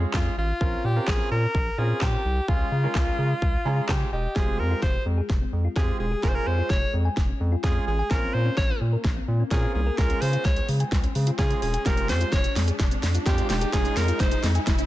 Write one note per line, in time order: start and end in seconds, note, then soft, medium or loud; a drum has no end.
0.00 0.30 G#3 medium
0.00 0.30 C#4 medium
0.00 0.30 F4 medium
0.00 0.30 G#4 medium
0.14 0.29 F2 medium
0.14 0.36 F4 medium
0.14 kick loud
0.14 snare medium
0.14 clap loud
0.37 0.53 A1 medium
0.37 0.86 F4 loud
0.61 0.76 A#1 loud
0.61 0.80 C4 medium
0.61 0.80 C#4 medium
0.61 0.81 F4 medium
0.61 0.81 A#4 medium
0.61 kick loud
0.84 0.99 A#2 medium
0.84 1.10 G4 medium
0.96 1.42 C4 medium
0.96 1.42 C#4 medium
0.96 1.42 F4 medium
0.96 1.42 A#4 medium
1.07 1.23 A#1 loud
1.07 1.31 G#4 medium
1.07 kick loud
1.07 snare medium
1.07 clap loud
1.31 1.47 A#2 loud
1.31 1.80 A#4 loud
1.55 1.70 A#1 loud
1.55 kick loud
1.78 1.93 A#2 loud
1.78 2.17 C4 medium
1.78 2.17 C#4 medium
1.78 2.17 F4 medium
1.78 2.03 G#4 loud
1.78 2.18 A#4 medium
2.01 2.17 A#2 loud
2.01 2.50 G4 loud
2.01 kick loud
2.01 snare medium
2.01 clap loud
2.25 2.40 C2 medium
2.48 2.64 C#2 loud
2.48 2.68 G#3 medium
2.48 2.68 C#4 medium
2.48 2.68 F4 medium
2.48 3.88 F4 medium
2.48 2.68 G#4 medium
2.48 kick loud
2.72 2.87 C#3 loud
2.84 3.29 G#3 medium
2.84 3.29 C#4 medium
2.84 3.29 F4 medium
2.84 3.29 A#4 medium
2.95 3.10 C#2 loud
2.95 kick loud
2.95 snare medium
2.95 clap loud
3.18 3.34 C#3 medium
3.42 3.57 C#2 loud
3.42 kick loud
3.65 3.81 C#3 loud
3.65 4.05 G#3 medium
3.65 4.05 C#4 medium
3.65 4.05 F4 medium
3.65 4.05 G#4 medium
3.65 3.87 A#5 medium
3.89 4.04 C#3 loud
3.89 4.11 G4 medium
3.89 4.11 G#5 medium
3.89 kick loud
3.89 snare medium
3.89 clap loud
4.12 4.27 E1 medium
4.12 4.38 G4 medium
4.12 4.34 D#5 medium
4.36 4.60 F1 loud
4.36 4.88 G#3 medium
4.36 4.44 G#3 medium
4.36 4.88 C4 medium
4.36 4.88 F4 medium
4.36 4.88 G4 medium
4.36 4.61 G#4 medium
4.36 kick loud
4.36 snare medium
4.36 riser medium
4.47 4.55 C4 medium
4.59 4.74 F2 loud
4.59 4.67 G#3 medium
4.59 4.82 A#4 medium
4.71 4.79 F4 medium
4.82 4.98 F1 loud
4.82 4.90 G#3 medium
4.82 5.05 C5 loud
4.82 kick loud
4.82 snare soft
4.94 5.02 G4 medium
5.06 5.21 F2 loud
5.06 5.14 G#3 medium
5.18 5.25 G#4 medium
5.29 5.45 F1 loud
5.29 5.37 G#3 medium
5.29 kick loud
5.29 snare medium
5.41 5.49 C4 medium
5.53 5.68 F2 medium
5.53 5.61 G#3 medium
5.65 5.72 F4 medium
5.76 5.92 F2 loud
5.76 6.03 G#3 medium
5.76 5.84 G#3 medium
5.76 6.03 C4 medium
5.76 6.03 F4 medium
5.76 6.03 G4 medium
5.76 5.98 G#4 medium
5.76 kick loud
5.76 snare medium
5.88 5.96 G4 medium
6.00 6.15 E1 medium
6.00 6.08 G#3 medium
6.00 6.25 G#4 medium
6.12 6.19 G#4 loud
6.23 6.38 F1 loud
6.23 6.75 G#3 medium
6.23 6.31 G#3 medium
6.23 6.75 C#4 medium
6.23 6.76 F4 medium
6.23 6.76 G#4 medium
6.23 6.30 A#4 loud
6.23 kick loud
6.23 snare medium
6.29 6.37 C5 medium
6.35 6.43 C#4 medium
6.35 6.49 A#4 loud
6.47 6.62 F2 medium
6.47 6.54 G#3 medium
6.47 6.72 C5 loud
6.58 6.66 F4 medium
6.70 6.85 F1 loud
6.70 6.78 G#3 medium
6.70 6.94 C#5 loud
6.70 kick loud
6.70 snare medium
6.82 6.90 G#4 medium
6.93 7.09 F2 loud
6.93 7.01 G#3 medium
7.05 7.13 G#5 medium
7.17 7.32 F1 loud
7.17 7.25 G#3 medium
7.17 kick loud
7.17 snare medium
7.29 7.36 C#4 medium
7.40 7.56 F2 medium
7.40 7.48 G#3 medium
7.52 7.60 F4 medium
7.63 7.79 F2 loud
7.63 7.90 G#3 medium
7.63 7.72 G#3 medium
7.63 7.90 C#4 medium
7.63 7.90 F4 medium
7.63 7.90 G#4 medium
7.63 7.86 G#4 medium
7.63 kick loud
7.63 snare medium
7.75 7.83 G#4 medium
7.87 8.03 A1 medium
7.87 7.95 G#3 medium
7.87 8.12 G#4 medium
7.99 8.07 G#5 loud
8.10 8.26 A#1 loud
8.10 8.18 A#3 medium
8.10 8.63 C4 medium
8.10 8.63 C#4 medium
8.10 8.63 F4 medium
8.10 8.35 A#4 loud
8.10 8.63 A#4 medium
8.10 kick loud
8.10 snare medium
8.22 8.30 C4 medium
8.34 8.50 A#2 loud
8.34 8.42 A#3 medium
8.34 8.57 C5 loud
8.46 8.54 C#4 loud
8.57 8.73 A#1 loud
8.57 8.65 A#3 medium
8.57 8.79 C#5 loud
8.57 kick loud
8.57 snare medium
8.69 8.77 F4 medium
8.81 8.96 A#2 loud
8.81 8.89 A#3 medium
8.93 9.01 A#4 medium
9.04 9.20 A#1 loud
9.04 9.12 A#3 medium
9.04 kick loud
9.04 snare medium
9.16 9.24 C4 medium
9.28 9.43 A#2 loud
9.28 9.36 A#3 medium
9.40 9.48 C#4 medium
9.51 9.66 A#2 loud
9.51 9.59 A#3 medium
9.51 9.77 C4 medium
9.51 9.78 C#4 medium
9.51 9.78 F4 medium
9.51 9.73 G#4 medium
9.51 9.78 A#4 medium
9.51 kick loud
9.51 snare medium
9.63 9.71 F4 medium
9.75 9.90 C2 medium
9.75 9.83 A#3 medium
9.75 9.99 G#4 medium
9.87 9.94 A#4 loud
9.97 10.14 C#2 loud
9.97 10.51 G#3 medium
9.97 10.06 G#3 medium
9.97 10.51 C#4 medium
9.97 10.51 F4 medium
9.97 10.51 G#4 medium
9.97 10.23 A#4 loud
9.97 kick loud
9.97 snare medium
10.10 10.18 C#4 medium
10.10 closed hi-hat medium
10.21 10.37 C#3 loud
10.21 10.30 G#3 medium
10.21 10.46 C5 loud
10.21 open hi-hat medium
10.33 10.41 F4 medium
10.33 closed hi-hat medium
10.45 10.60 C#2 loud
10.45 10.53 G#3 medium
10.45 10.68 C#5 loud
10.45 kick loud
10.45 snare medium
10.56 10.65 G#4 medium
10.56 closed hi-hat medium
10.68 10.84 C#3 loud
10.68 10.76 G#3 medium
10.68 open hi-hat medium
10.80 10.88 G#5 medium
10.80 closed hi-hat medium
10.92 11.07 C#2 loud
10.92 11.00 G#3 medium
10.92 kick loud
10.92 snare medium
11.04 11.12 C#4 medium
11.04 closed hi-hat soft
11.15 11.31 C#3 loud
11.15 11.23 G#3 medium
11.15 open hi-hat medium
11.27 11.35 F4 medium
11.27 closed hi-hat medium
11.39 11.54 C#3 loud
11.39 11.65 G#3 medium
11.39 11.47 G#3 medium
11.39 11.65 C#4 medium
11.39 11.65 F4 medium
11.39 11.61 G#4 medium
11.39 11.65 G#4 medium
11.39 kick loud
11.39 snare medium
11.50 11.58 G#4 medium
11.50 closed hi-hat medium
11.62 11.78 E1 medium
11.62 11.70 G#3 medium
11.62 11.87 G#4 medium
11.62 open hi-hat medium
11.74 11.82 G#5 loud
11.74 closed hi-hat medium
11.85 12.11 F1 loud
11.85 12.38 G#3 medium
11.85 11.94 G#3 medium
11.85 12.38 C4 medium
11.85 12.38 F4 medium
11.85 12.38 G4 medium
11.85 12.09 A#4 medium
11.85 kick loud
11.85 snare medium
11.85 shaker medium
11.97 12.05 C4 medium
11.97 closed hi-hat soft
11.97 shaker medium
12.09 12.24 F2 loud
12.09 12.17 G#3 medium
12.09 12.35 C5 loud
12.09 snare medium
12.09 open hi-hat medium
12.09 shaker medium
12.21 12.29 F4 loud
12.21 closed hi-hat medium
12.21 shaker medium
12.32 12.48 F1 loud
12.32 12.40 G#3 medium
12.32 12.56 C#5 loud
12.32 kick loud
12.32 snare medium
12.32 shaker medium
12.44 12.52 G4 medium
12.44 closed hi-hat medium
12.44 shaker medium
12.56 12.71 F2 loud
12.56 12.64 G#3 medium
12.56 snare medium
12.56 open hi-hat medium
12.56 shaker medium
12.68 12.76 G#4 medium
12.68 closed hi-hat medium
12.68 shaker medium
12.79 12.95 F1 loud
12.79 12.87 G#3 medium
12.79 kick loud
12.79 snare medium
12.79 shaker medium
12.91 12.99 C4 medium
12.91 closed hi-hat soft
12.91 shaker medium
13.03 13.18 F2 loud
13.03 13.11 G#3 medium
13.03 snare medium
13.03 open hi-hat medium
13.03 shaker soft
13.15 13.23 F4 medium
13.15 closed hi-hat medium
13.15 shaker medium
13.26 13.41 F2 loud
13.26 13.52 G#3 medium
13.26 13.34 G#3 medium
13.26 13.53 C4 medium
13.26 13.53 F4 medium
13.26 13.48 G4 medium
13.26 13.53 G4 medium
13.26 kick loud
13.26 snare medium
13.26 shaker medium
13.38 13.46 G4 medium
13.38 closed hi-hat medium
13.38 shaker medium
13.50 13.65 E1 medium
13.50 13.58 G#3 medium
13.50 13.75 G4 medium
13.50 snare medium
13.50 open hi-hat medium
13.50 shaker soft
13.61 13.69 G#4 loud
13.61 closed hi-hat medium
13.61 shaker medium
13.73 13.89 F1 loud
13.73 14.26 G#3 medium
13.73 13.81 G#3 medium
13.73 14.26 C#4 medium
13.73 14.26 F4 medium
13.73 13.98 G#4 loud
13.73 14.26 G#4 medium
13.73 kick loud
13.73 snare medium
13.73 shaker medium
13.85 13.93 C#4 medium
13.85 closed hi-hat medium
13.85 shaker medium
13.96 14.12 F2 medium
13.96 14.04 G#3 medium
13.96 14.22 A#4 medium
13.96 snare medium
13.96 open hi-hat medium
13.96 shaker medium
14.08 14.16 F4 loud
14.08 closed hi-hat medium
14.08 shaker medium
14.20 14.35 F1 loud
14.20 14.28 G#3 medium
14.20 14.44 C5 loud
14.20 kick loud
14.20 snare medium
14.20 shaker medium
14.31 14.40 G#4 medium
14.31 closed hi-hat medium
14.31 shaker medium
14.43 14.59 F2 loud
14.43 14.51 G#3 medium
14.43 snare medium
14.43 open hi-hat medium
14.43 shaker medium
14.55 14.63 G#5 medium
14.55 closed hi-hat medium
14.55 shaker medium
14.67 14.82 F1 loud
14.67 14.75 G#3 medium
14.67 kick loud
14.67 snare loud
14.67 shaker medium
14.78 14.86 C#4 medium
14.78 closed hi-hat medium
14.78 shaker medium